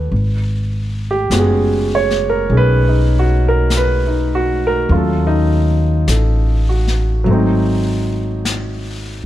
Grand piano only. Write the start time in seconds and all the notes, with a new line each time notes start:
Already playing: G3 B3 C#4 F#4 G4 A4 B4 F#5
1.11 G4
1.32 G#3 B3 C#4 F#4
1.39 G#4
1.95 C#5
2.30 A#4
2.50 C#4 D#4 G#4
2.57 B4
2.88 D#4
3.19 F#4
3.48 A#4
3.77 B4
4.07 D#4
4.35 F#4
4.67 A#4
4.90 F#3 A3 C#4 F4
4.97 A4
5.27 D#4
6.10 A4
6.69 F#4
7.24 F#3 A3
7.31 C4 D#4